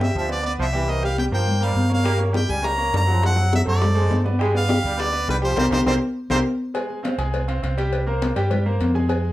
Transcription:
0.00 grand piano G3 G4 G5, harmonica E5, high conga
0.15 fingered electric bass D2, trombone section F3, harmonica E5, high conga
0.28 grand piano B3 B4 D5, harmonica D5, high conga
0.43 grand piano B3 B4 D5, harmonica D5, high conga
0.59 fingered electric bass C2, trombone section F3, harmonica E5, high conga
0.73 trombone section E3, grand piano G3 G4 G5, high conga
0.88 grand piano A#3 A#4 C5, harmonica D#5, high conga
1.02 grand piano G3 G4 G5, harmonica F5, high conga
1.18 harmonica G5, high conga
1.31 fingered electric bass G2, trombone section F3, grand piano A#3 A#4 C5, harmonica G5, high conga
1.48 high conga, low conga
1.61 trombone section G3, grand piano A#3 A#4 C5, harmonica F5, high conga
1.75 fingered electric bass G2, high conga
1.89 grand piano A#3 A#4 C#5, high conga
1.93 harmonica F5
2.04 grand piano G3 G4 G5, trombone section A#3, high bongo
2.18 grand piano A#3 A#4 C#5, high bongo, high conga
2.33 grand piano G3 G4 G5, harmonica G5, high bongo, high conga
2.49 fingered electric bass C#2, trombone section G3, harmonica G#5, high bongo
2.62 grand piano A#3 A#4 C#5, harmonica A#5, high bongo, high conga
2.78 grand piano A#3 A#4 C#5, high conga
2.93 fingered electric bass F#2, trombone section G3, harmonica A#5, high bongo, low bongo, high conga
3.07 trombone section F3, grand piano F#3 F#4 F#5, high bongo, high conga
3.21 grand piano A3 A4 C5, high bongo, high conga
3.25 harmonica F#5
3.36 grand piano F#3 F#4 F#5, high bongo, high conga
3.53 harmonica E5, high bongo, high conga
3.65 fingered electric bass F#2, trombone section F#3, grand piano A3 A4 C5, harmonica D5, high bongo
3.82 high bongo, high conga, low conga
3.95 trombone section G#3, grand piano A3 A4 C5, high conga
4.10 fingered electric bass G2, high bongo, low bongo, high conga
4.24 grand piano B3 B4 D5, high bongo, high conga
4.39 grand piano G3 G4 G5, trombone section G#3, high bongo, high conga
4.54 grand piano B3 B4 D5, harmonica F5, high bongo, high conga
4.68 grand piano G3 G4 G5, high bongo, high conga
4.84 fingered electric bass D2, trombone section G3, high bongo
4.97 grand piano B3 B4 D5, harmonica D5, high bongo, high conga
5.12 grand piano B3 B4 D5, high conga
5.28 fingered electric bass C2, trombone section G3, harmonica B4, high bongo, low bongo, high conga
5.42 trombone section F3, grand piano G3 G4 G5, harmonica C5, high bongo, high conga
5.56 fingered electric bass C2, trombone section G3 A#3 C4, grand piano G4 A#4 C5, harmonica C5, low bongo, high conga
5.71 fingered electric bass C2, trombone section G3 A#3 C4, grand piano G4 A#4 C5, harmonica C5, low bongo, high conga
5.86 fingered electric bass C2, trombone section G3 A#3 C4, grand piano G4 A#4 C5, harmonica C5, low bongo, high conga
6.30 fingered electric bass C2, trombone section G3 A#3 C4, grand piano G4 A#4 C5, harmonica C5, low bongo, high conga
6.74 grand piano G#3 G#4 G#5, cowbell, high conga
6.90 high conga
7.03 grand piano C4 C5 F5, cowbell, high conga
7.18 fingered electric bass C2, grand piano G#3 G#4 G#5, cowbell
7.34 cowbell, high conga
7.48 grand piano C4 C5 F5, cowbell, high conga
7.62 fingered electric bass C2, grand piano C4 C5 F5, cowbell, high conga
7.77 grand piano G3 G4 G5, cowbell, high conga
7.93 cowbell, high conga
8.06 grand piano A#3 A#4 C5, high conga
8.22 cowbell, high conga
8.36 fingered electric bass G2, grand piano G3 G4 G5, cowbell, high conga
8.50 grand piano G3 G4 G5, cowbell, high conga, low conga
8.66 grand piano A#3 A#4 C5, high conga
8.80 fingered electric bass F2, cowbell, high conga
8.94 grand piano G#3 G#4 G#5, high conga
9.09 grand piano G#3 G#4 G#5, cowbell, high conga
9.25 high conga

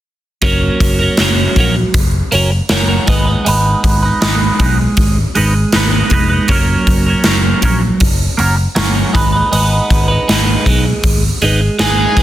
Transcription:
0.42 picked electric bass F#1, clean electric guitar F#3 A#3 C#4 F#4 A#4, kick, open hi-hat
0.80 picked electric bass F#1, kick, open hi-hat
0.99 clean electric guitar C#4 F#4 A#4
1.17 picked electric bass F#1, clean electric guitar F#3 A#3 C#4 F#4, snare, open hi-hat
1.22 clean electric guitar A#4
1.56 picked electric bass A#1, clean electric guitar A#3 C#4 F#4, kick, open hi-hat
1.60 clean electric guitar A#4
1.76 muted clean electric guitar stroke
1.94 picked electric bass F#1, kick, open hi-hat
2.32 picked electric bass F#1, clean electric guitar A#3 C#4 F#4 A#4, open hi-hat
2.52 muted clean electric guitar stroke
2.69 picked electric bass F#1, clean electric guitar F#3 A#3 C#4 F#4 A#4, snare, open hi-hat
2.89 clean electric guitar C#4 F#4 A#4
3.06 picked electric bass G#1, clean electric guitar G#3 B3 D#4 B4, kick, open hi-hat
3.27 clean electric guitar B3 D#4 B4
3.45 picked electric bass G#1, clean electric guitar G#3 B3 D#4 B4, open hi-hat
3.84 picked electric bass G#1, kick, open hi-hat
4.03 clean electric guitar B3 D#4 B4
4.21 picked electric bass G#1, clean electric guitar G#3 B3 D#4 B4, snare, open hi-hat
4.59 picked electric bass B1, clean electric guitar G#3 B3 D#4 B4, kick, open hi-hat
4.79 muted clean electric guitar stroke
4.97 picked electric bass G#1, kick, open hi-hat
5.35 picked electric bass G#1, clean electric guitar G#3 B3 D#4 B4, open hi-hat
5.55 muted clean electric guitar stroke
5.72 picked electric bass G#1, clean electric guitar G#3 B3 D#4 B4, snare, open hi-hat
5.92 clean electric guitar B3 D#4 B4
6.10 picked electric bass F1, clean electric guitar G#3 B3 D#4, kick, open hi-hat
6.14 clean electric guitar B4
6.30 clean electric guitar B3 D#4 B4
6.48 picked electric bass F#1, clean electric guitar F#3 A#3 C#4 F#4 A#4, kick, open hi-hat
6.87 picked electric bass F#1, kick, open hi-hat
7.06 clean electric guitar C#4 F#4 A#4
7.24 picked electric bass F#1, clean electric guitar F#3 A#3 C#4 F#4, snare, open hi-hat
7.28 clean electric guitar A#4
7.61 picked electric bass A#1, clean electric guitar A#3 C#4 F#4 A#4, kick, open hi-hat
7.82 muted clean electric guitar stroke
8.00 picked electric bass F#1, kick, open hi-hat
8.37 picked electric bass F#1, clean electric guitar A#3 C#4 F#4 A#4, open hi-hat
8.57 muted clean electric guitar stroke
8.75 picked electric bass G1, clean electric guitar F#3 A#3 C#4 F#4 A#4, snare, open hi-hat
8.95 clean electric guitar C#4 F#4 A#4
9.13 picked electric bass G#1, clean electric guitar G#3 B3 D#4 B4, kick, open hi-hat
9.32 clean electric guitar B3 D#4 B4
9.52 picked electric bass G#1, clean electric guitar G#3 B3 D#4 B4, open hi-hat
9.90 picked electric bass G#1, kick, open hi-hat
10.08 clean electric guitar B3 D#4 B4
10.28 picked electric bass G#1, clean electric guitar G#3 B3 D#4 B4, snare, open hi-hat
10.65 picked electric bass B1, clean electric guitar G#3 B3 D#4 B4, kick, open hi-hat
10.86 muted clean electric guitar stroke
11.03 picked electric bass G#1, kick, open hi-hat
11.42 picked electric bass G#1, clean electric guitar G#3 B3 D#4 B4, open hi-hat
11.61 muted clean electric guitar stroke
11.79 picked electric bass G#1, clean electric guitar G#3 B3 D#4 B4, lead electric guitar G#4, snare, open hi-hat
11.97 clean electric guitar B3 D#4 B4
12.16 picked electric bass F1, clean electric guitar G#3 B3 D#4, kick, open hi-hat

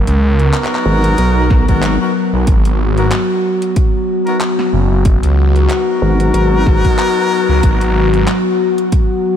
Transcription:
Already playing: ambient pad F#3 B3 A#4
0.07 detuned saw bass C#2, closed hi-hat
0.39 horn section B3 D#4 F#4 A#4, closed hi-hat
0.54 clap, closed hi-hat
0.64 clap
0.75 clap
0.86 wobble bass G#1
1.04 closed hi-hat
1.18 wobble bass B1, closed hi-hat
1.50 kick, snare
1.68 wobble bass G#1, horn section B3 D#4 F#4 A#4, kick, closed hi-hat
1.83 clap, closed hi-hat
2.01 horn section B3 D#4 F#4 A#4
2.33 detuned saw bass B1
2.47 detuned saw bass G#1, ambient pad F#4, kick, closed hi-hat
2.65 closed hi-hat
2.97 horn section B3 D#4 F#4 A#4, closed hi-hat
3.12 clap, closed hi-hat
3.62 closed hi-hat
3.76 kick, closed hi-hat
4.26 horn section B3 D#4 F#4 A#4, closed hi-hat
4.41 clap, closed hi-hat
4.59 snare
4.73 detuned saw bass F#1
4.91 detuned saw bass F#1
5.05 kick, closed hi-hat
5.23 detuned saw bass C#2, closed hi-hat
5.55 horn section B3 D#4 F#4 A#4, closed hi-hat
5.70 clap, closed hi-hat
6.02 wobble bass G#1
6.20 closed hi-hat
6.34 wobble bass G#1, closed hi-hat
6.66 kick, snare
6.85 kick, closed hi-hat
6.99 clap, closed hi-hat
7.49 detuned saw bass C#2
7.63 detuned saw bass G#1, kick, closed hi-hat
7.81 closed hi-hat
8.14 horn section B3 D#4 F#4 A#4, closed hi-hat
8.28 clap, closed hi-hat
8.78 closed hi-hat
8.92 kick, closed hi-hat

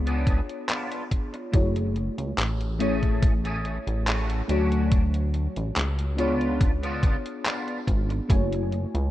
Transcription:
Already playing: analog synth bass C#2, fm electric piano B3 D4 F4 G#4 C#5
0.06 clean electric guitar B3 D4 G#4, closed hi-hat
0.27 kick, closed hi-hat
0.49 closed hi-hat
0.68 clean electric guitar B3 D4 F4, clap, closed hi-hat
0.92 closed hi-hat
1.11 kick, closed hi-hat
1.33 muted clean electric guitar stroke, closed hi-hat
1.52 analog synth bass F#1, fm electric piano A3 E4 F#4 G#4 C#5, muted clean electric guitar stroke, kick, closed hi-hat
1.75 muted clean electric guitar stroke, closed hi-hat
1.95 muted clean electric guitar stroke, closed hi-hat
2.18 analog synth bass C#2, closed hi-hat
2.38 analog synth bass A1, clap, closed hi-hat
2.61 closed hi-hat
2.79 fm electric piano A3 C#4 E4 G#4 C#5, clean electric guitar A3 C#4 G#4, closed hi-hat
3.03 kick, closed hi-hat
3.23 kick, closed hi-hat
3.44 clean electric guitar A3 C#4 G#4, closed hi-hat
3.65 closed hi-hat
3.87 analog synth bass A1, closed hi-hat
4.07 clean electric guitar A3 C#4 F#4, clap, closed hi-hat
4.30 closed hi-hat
4.48 analog synth bass D2, fm electric piano F#3 A3 F#4 C#5, clean electric guitar C#4 D4 F#4, closed hi-hat
4.72 closed hi-hat
4.92 kick, closed hi-hat
5.14 muted clean electric guitar stroke, closed hi-hat
5.33 muted clean electric guitar stroke, closed hi-hat
5.56 analog synth bass A1, closed hi-hat
5.76 analog synth bass C#2, clap, closed hi-hat
5.99 closed hi-hat
6.17 fm electric piano B3 D4 F4 G#4 C#5, clean electric guitar B3 D4 F4, closed hi-hat
6.41 closed hi-hat
6.61 kick, closed hi-hat
6.83 clean electric guitar B3 D4 F4, closed hi-hat
7.03 kick, closed hi-hat
7.26 closed hi-hat
7.45 clean electric guitar B3 D4 F4, clap, closed hi-hat
7.68 closed hi-hat
7.87 analog synth bass G#1, kick, closed hi-hat
8.09 muted clean electric guitar stroke, closed hi-hat
8.28 analog synth bass F#1, fm electric piano A3 E4 F#4 C#5 G#5, muted clean electric guitar stroke, kick, closed hi-hat
8.52 muted clean electric guitar stroke, closed hi-hat
8.71 muted clean electric guitar stroke, closed hi-hat
8.94 analog synth bass C#2, closed hi-hat

